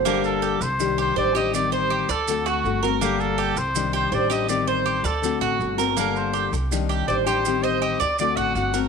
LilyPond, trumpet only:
\new Staff \with { instrumentName = "Trumpet" } { \time 4/4 \key g \minor \tempo 4 = 162 g'8 a'4 c''4 c''8 d''8 ees''8 | d''8 c''4 a'4 fis'4 r8 | g'8 a'4 c''4 c''8 d''8 ees''8 | d''8 c''4 a'4 fis'4 r8 |
bes'8 c''4 r4. d''8 c''8~ | c''8 ees''8 ees''8 d''8 d''8 fis''8 fis''8. r16 | }